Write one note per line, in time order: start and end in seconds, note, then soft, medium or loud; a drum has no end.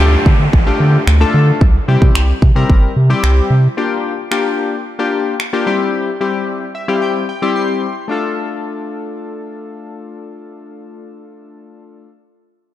0.00 0.17 D2 medium
0.00 0.43 A3 medium
0.00 0.43 D4 medium
0.00 0.44 F4 medium
0.00 0.44 G4 loud
0.00 downlifter medium
0.26 0.35 D3 loud
0.26 kick loud
0.40 0.48 D3 loud
0.53 0.71 A1 loud
0.53 kick medium
0.66 1.02 A3 medium
0.66 1.02 D4 medium
0.66 1.02 F4 medium
0.66 1.02 G4 loud
0.80 0.98 D3 loud
1.07 1.25 D2 loud
1.07 finger snap loud
1.21 1.61 A3 medium
1.21 1.61 D4 medium
1.21 1.61 F4 medium
1.21 1.61 A4 loud
1.34 1.52 D3 loud
1.61 1.79 C2 loud
1.61 kick loud
1.88 1.97 C3 loud
1.88 2.33 G3 medium
1.88 2.33 C4 medium
1.88 2.33 E4 medium
1.88 2.33 G4 medium
2.02 2.11 C3 medium
2.02 kick medium
2.15 2.33 C2 medium
2.15 finger snap loud
2.42 2.51 C3 medium
2.42 kick loud
2.56 2.65 C3 medium
2.56 2.91 G3 medium
2.56 2.91 C4 medium
2.56 2.91 E4 medium
2.56 2.92 A#4 loud
2.70 2.87 G1 loud
2.70 kick medium
2.96 3.14 C3 loud
3.10 3.54 G3 medium
3.10 3.54 C4 medium
3.10 3.54 E4 medium
3.10 3.54 G4 loud
3.23 3.41 C2 loud
3.23 finger snap loud
3.50 3.68 C3 loud
3.77 4.13 A#3 medium
3.77 4.13 D4 medium
3.77 4.13 F4 medium
3.77 4.13 G4 medium
4.31 4.76 A#3 medium
4.31 4.76 D4 medium
4.31 4.76 F4 medium
4.31 4.76 G4 loud
4.31 finger snap loud
4.99 5.35 A#3 medium
4.99 5.35 D4 medium
4.99 5.35 F4 medium
4.99 5.35 G4 medium
5.40 finger snap loud
5.53 5.67 A#3 medium
5.53 5.67 D4 medium
5.53 5.67 F4 medium
5.53 5.66 G4 loud
5.66 6.10 G3 medium
5.66 6.10 C4 medium
5.66 6.10 E4 medium
5.66 6.10 G4 loud
6.21 6.65 G3 medium
6.21 6.65 C4 medium
6.21 6.65 E4 medium
6.21 6.65 G4 medium
6.75 6.87 E5 medium
6.88 7.24 G3 medium
6.88 7.24 C4 medium
6.88 7.24 E4 medium
6.88 7.24 G4 medium
6.88 7.01 F5 medium
7.02 7.27 G5 medium
7.29 7.54 G5 medium
7.42 7.87 G3 medium
7.42 7.87 C4 medium
7.42 7.87 E4 medium
7.42 7.87 G4 loud
7.56 8.06 C6 medium
8.08 12.06 A3 medium
8.08 12.07 D4 medium
8.08 12.09 F4 medium
8.08 12.10 A4 medium